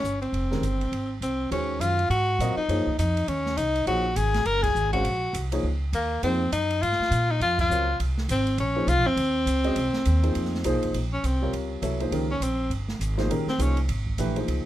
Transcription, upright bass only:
0.03 0.32 G1 medium
0.32 0.61 F1 medium
0.61 0.91 G1 medium
0.92 1.20 G#1 medium
1.21 1.50 C2 medium
1.51 1.79 D#2 medium
1.80 2.09 F#2 medium
2.10 2.39 G#2 medium
2.39 2.56 A#2 medium
2.57 muted upright bass stroke soft
2.69 2.85 F#2 medium
2.87 muted upright bass stroke soft
2.98 3.27 F2 medium
3.28 3.57 D#2 medium
3.57 3.86 C2 medium
3.86 4.15 A#1 medium
4.16 4.45 G#1 medium
4.45 4.74 F#1 medium
4.75 5.03 G#1 medium
5.04 5.33 A#1 medium
5.33 5.62 C2 medium
5.63 5.92 C#2 medium
5.93 6.21 D#2 medium
6.23 6.51 F2 medium
6.52 6.81 F#2 medium
6.82 6.98 G#2 medium
7.00 muted upright bass stroke soft
7.11 7.39 A#2 medium
7.40 7.69 F2 medium
7.70 7.98 C#2 loud
8.00 8.28 C2 medium
8.29 8.57 G#1 medium
8.58 8.86 A#1 medium
8.87 8.97 C2 loud
8.97 9.06 A#1 medium
9.16 9.45 D#2 medium
9.46 9.75 C#2 medium
9.76 9.92 C2 medium
10.06 10.34 D#2 medium
10.36 10.64 F2 medium
10.65 10.74 C2 medium
10.74 10.84 A#1 medium
10.85 10.93 F1 medium
10.94 11.23 A#1 medium
11.23 11.52 C2 medium
11.53 11.81 C#2 medium
11.82 12.10 C2 medium
12.11 12.40 C#2 medium
12.40 12.69 A#1 medium
12.69 12.99 G1 medium
12.99 13.28 G#1 medium
13.29 13.46 A#1 medium
13.46 muted upright bass stroke soft
13.58 13.88 C2 medium
13.88 14.17 G#1 medium
14.18 14.47 A#1 medium
14.48 14.64 C#2 medium

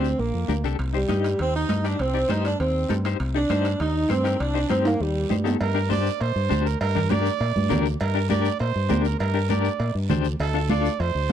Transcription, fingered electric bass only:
0.00 0.13 D2 medium
0.19 0.31 A#1 medium
0.34 0.48 F2 medium
0.49 0.63 D2 medium
0.64 0.78 C2 medium
0.79 1.03 C2 medium
1.09 1.33 G2 medium
1.40 1.64 D#2 medium
1.70 1.94 G2 medium
1.99 2.24 C2 medium
2.30 2.54 G2 medium
2.60 2.84 D#2 medium
2.90 3.14 G2 medium
3.20 3.44 C2 loud
3.50 3.74 G2 medium
3.80 4.04 D#2 medium
4.10 4.34 G2 medium
4.40 4.64 C2 loud
4.70 4.94 G2 medium
5.00 5.24 D#2 medium
5.30 5.54 G2 medium
5.61 6.09 G2 medium
6.21 6.33 A#2 medium
6.36 6.48 G2 medium
6.51 6.75 D2 medium
6.81 7.29 G2 medium
7.40 7.53 A#2 medium
7.56 7.68 G2 medium
7.71 7.95 D2 medium
8.01 8.49 G2 medium
8.60 8.72 A#2 medium
8.76 8.88 G2 medium
8.90 9.14 D2 medium
9.20 9.68 G2 medium
9.80 9.92 A#2 medium
9.95 10.07 G2 medium
10.10 10.34 D2 loud
10.40 10.88 D2 loud
11.00 11.12 F2 loud
11.15 11.27 D2 medium

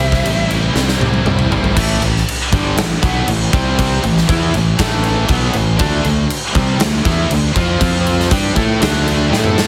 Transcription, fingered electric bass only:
0.00 0.21 C2 medium
0.24 0.68 A1 medium
0.75 0.97 C2 medium
1.00 1.22 C2 medium
1.25 1.47 C2 loud
1.50 1.73 G#1 medium
1.77 1.99 A1 medium
2.00 2.24 A1 medium
2.52 2.76 G1 medium
2.77 3.01 A1 medium
3.02 3.26 B1 medium
3.27 3.51 A1 medium
3.53 4.00 C2 medium
4.03 4.27 A1 medium
4.29 4.52 E2 loud
4.53 4.77 A1 medium
4.79 5.26 A1 medium
5.29 5.53 B1 loud
5.55 5.78 A1 medium
5.79 6.03 D2 medium
6.05 6.28 D2 medium
6.55 6.78 C2 loud
6.78 7.03 D2 medium
7.05 7.29 E2 medium
7.30 7.54 D2 medium
7.55 7.79 F2 medium
7.80 8.28 F2 loud
8.31 8.55 G2 medium
8.56 8.80 A2 medium
8.82 9.29 D2 medium
9.31 9.67 A2 loud

